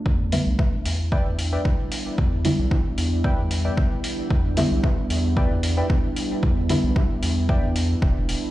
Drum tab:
HH |-o-o-o-o|-o-o-o-o|-o-o-o-o|-o-o-o-o|
BD |o-o-o-o-|o-o-o-o-|o-o-o-o-|o-o-o-o-|